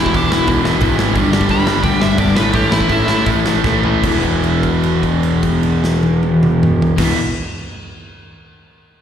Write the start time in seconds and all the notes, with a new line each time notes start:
Already playing: E1 B2 E3
0.00 E2 E4
0.06 kick
0.13 E1 E2 B2 E3 D4, kick, open hi-hat
0.30 E1 E2 B2 E3 E4, snare
0.47 E1 E2 B2 E3, kick, open hi-hat
0.64 E2 B2 E3, snare
0.81 G#1 E2 B2 E3, kick, open hi-hat
0.98 E2 B2 E3, snare
1.15 G1 G2 D3 G3, kick, open hi-hat
1.33 G1 G2 D3 G3, snare
1.41 kick
1.49 G1 G2 D3 G3 B5, kick, open hi-hat
1.66 G1 G2 D3 G3, snare
1.83 D2 G2 D3 G3 G5, kick, open hi-hat
2.00 G1 G2 D3 G3 E5, snare
2.18 G1 G2 D3 G3 D5, kick, open hi-hat
2.35 A1 A2 E3 A3 B4, snare
2.53 A1 A2 E3 A3 G4, kick, open hi-hat
2.71 A1 A2 E3 A3 E4, snare
2.81 kick
2.89 A1 A2 E3 A3 E4, kick, open hi-hat
3.07 A1 A2 E3 A3 E4, snare
3.26 A1 A2 E3 A3, kick, open hi-hat
3.46 A2 E3 A3, snare
3.64 A1 A2 E3 A3, kick, snare
3.84 A2 E3 A3, floor tom
4.03 E1 E2 B2 E3, kick, crash
4.23 kick, crash
4.44 crash
4.63 kick, crash
4.83 crash
5.03 kick, crash
5.23 crash
5.43 kick, crash
5.63 crash
5.84 snare
6.03 high tom
6.23 high tom
6.43 mid tom
6.63 mid tom
6.82 floor tom
6.96 E1 E2 B2, kick, snare, crash
7.01 E3